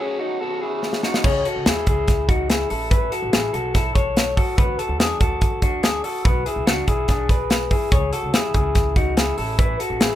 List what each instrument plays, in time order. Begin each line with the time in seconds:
0.00 overdriven electric guitar F#3 A3 C#4 F#4, clean electric guitar C#4 G#4
0.19 clean electric guitar D#4 F#4
0.40 overdriven electric guitar B2 D#3 B3 C#4 F#4, clean electric guitar F#4 A4
0.61 overdriven electric guitar B3 C#4 F#4, clean electric guitar E4 G#4
0.83 overdriven electric guitar D#3 B3 C#4 F#4, snare
0.93 snare
1.03 overdriven electric guitar B3 C#4 F#4, clean electric guitar D#4 F#4, snare
1.14 snare
1.24 upright bass C#2, clean electric guitar G#4 C#5, kick, crash
1.45 clean electric guitar F#4 A4, closed hi-hat
1.56 upright bass C#2
1.66 upright bass D#2, clean electric guitar E4 G#4, snare, closed hi-hat
1.87 upright bass C#2, clean electric guitar E4 G#4, kick, closed hi-hat
2.08 kick, snare, closed hi-hat
2.29 clean electric guitar D#4 F#4, kick, closed hi-hat
2.50 clean electric guitar E4 G#4, snare, closed hi-hat
2.70 upright bass A1, clean electric guitar E4 A4, open hi-hat
2.91 clean electric guitar E4 B4, kick, closed hi-hat
3.12 clean electric guitar F#4 A4, closed hi-hat
3.22 upright bass A1
3.33 upright bass A1, clean electric guitar E4 G#4, snare, closed hi-hat
3.53 upright bass B1, clean electric guitar F#4 A4, closed hi-hat
3.74 clean electric guitar E4 A4, kick, snare, closed hi-hat
3.95 clean electric guitar A4 C#5, kick, closed hi-hat
4.17 snare, closed hi-hat
4.37 clean electric guitar F#4 A4, kick, open hi-hat
4.58 upright bass D2, clean electric guitar F#4 B4, kick, closed hi-hat
4.79 clean electric guitar F#4 A4, closed hi-hat
4.89 upright bass D2
4.99 upright bass E2, clean electric guitar D4 G#4, snare, closed hi-hat
5.20 upright bass D2, clean electric guitar F#4 A4, kick, closed hi-hat
5.41 kick, closed hi-hat
5.62 clean electric guitar D4 F#4, kick, closed hi-hat
5.83 clean electric guitar D4 G#4, snare, closed hi-hat
6.04 clean electric guitar F#4 A4, open hi-hat
6.25 upright bass B1, clean electric guitar F#4 B4, kick, closed hi-hat
6.46 clean electric guitar E4 G#4, closed hi-hat
6.56 upright bass B1
6.66 upright bass C#2, clean electric guitar D4 F#4, snare, closed hi-hat
6.87 upright bass B1, clean electric guitar E4 G#4, kick, closed hi-hat
7.08 clean electric guitar D4 G#4, kick, snare, closed hi-hat
7.29 clean electric guitar G#4 B4, kick, closed hi-hat
7.50 snare, closed hi-hat
7.71 clean electric guitar E4 G#4, kick, open hi-hat
7.92 upright bass C#2, clean electric guitar G#4 C#5, kick, closed hi-hat
8.13 clean electric guitar F#4 A4, closed hi-hat
8.23 upright bass C#2
8.33 upright bass D#2, clean electric guitar E4 G#4, snare, closed hi-hat
8.54 upright bass C#2, clean electric guitar E4 G#4, kick, closed hi-hat
8.75 kick, snare, closed hi-hat
8.96 clean electric guitar D#4 F#4, kick, closed hi-hat
9.17 clean electric guitar E4 G#4, snare, closed hi-hat
9.38 upright bass A1, clean electric guitar E4 A4, open hi-hat
9.59 clean electric guitar E4 B4, kick, closed hi-hat
9.79 clean electric guitar F#4 A4, closed hi-hat
9.90 upright bass A1
10.00 clean electric guitar E4 G#4, snare, closed hi-hat